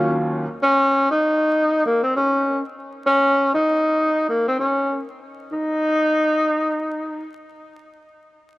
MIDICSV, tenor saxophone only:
0, 0, Header, 1, 2, 480
1, 0, Start_track
1, 0, Tempo, 612245
1, 491, Time_signature, 4, 2, 24, 8
1, 6727, End_track
2, 0, Start_track
2, 0, Title_t, "Tenor saxophone"
2, 0, Program_c, 0, 66
2, 0, Note_on_c, 0, 61, 85
2, 124, Note_off_c, 0, 61, 0
2, 493, Note_on_c, 0, 61, 107
2, 845, Note_off_c, 0, 61, 0
2, 868, Note_on_c, 0, 63, 80
2, 1420, Note_off_c, 0, 63, 0
2, 1456, Note_on_c, 0, 58, 82
2, 1576, Note_off_c, 0, 58, 0
2, 1592, Note_on_c, 0, 60, 73
2, 1684, Note_off_c, 0, 60, 0
2, 1696, Note_on_c, 0, 61, 77
2, 2046, Note_off_c, 0, 61, 0
2, 2401, Note_on_c, 0, 61, 113
2, 2759, Note_off_c, 0, 61, 0
2, 2777, Note_on_c, 0, 63, 77
2, 3335, Note_off_c, 0, 63, 0
2, 3363, Note_on_c, 0, 58, 77
2, 3488, Note_off_c, 0, 58, 0
2, 3511, Note_on_c, 0, 60, 72
2, 3599, Note_off_c, 0, 60, 0
2, 3604, Note_on_c, 0, 61, 80
2, 3960, Note_off_c, 0, 61, 0
2, 4328, Note_on_c, 0, 63, 96
2, 5738, Note_off_c, 0, 63, 0
2, 6727, End_track
0, 0, End_of_file